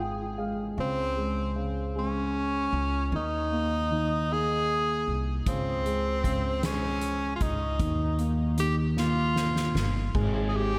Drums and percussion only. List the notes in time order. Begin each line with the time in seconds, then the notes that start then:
5.46 kick, closed hi-hat
5.86 closed hi-hat
6.24 kick, closed hi-hat
6.63 snare, closed hi-hat
7.01 closed hi-hat
7.41 kick, closed hi-hat
7.80 kick, closed hi-hat
8.19 closed hi-hat
8.58 closed hi-hat
8.97 snare
9.36 snare
9.56 snare
9.76 snare
10.15 kick, crash
10.54 ride